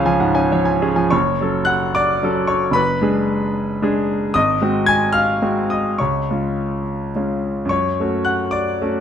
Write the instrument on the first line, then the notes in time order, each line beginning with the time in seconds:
grand piano
Already playing: C#2 F3 C#4 G#4 C#5 F5 G#5
0.05 F3 G#5
0.20 G#2 F#5
0.35 C#4 G#5
0.52 F3 C#5
0.65 G#5
0.82 C#4 G#4
0.96 F3 G#5
1.10 F#1 C#5 C#6
1.41 F#3 C#4 A4
1.65 F#5 F#6
1.95 D5 D6
2.23 F#3 C#4 A4
2.47 C#5 C#6
2.71 F#1 B4 B5
3.01 G#3 D4 G#4
3.82 G#3 D4 G#4
4.34 G#1 D#5 D#6
4.61 G#3 C4 F#4
4.86 G#5 G#6
5.13 F5 F6
5.42 G#3 C4 F#4
5.70 D#5 D#6
5.98 C#2 C#5 C#6
6.30 G#3 C#4 F4
7.15 G#3 C#4 F4
7.65 F#2
7.69 C#5 C#6
8.00 A3 C#4 F#4
8.25 F#5 F#6
8.51 D5 D6
8.82 A3 C#4 F#4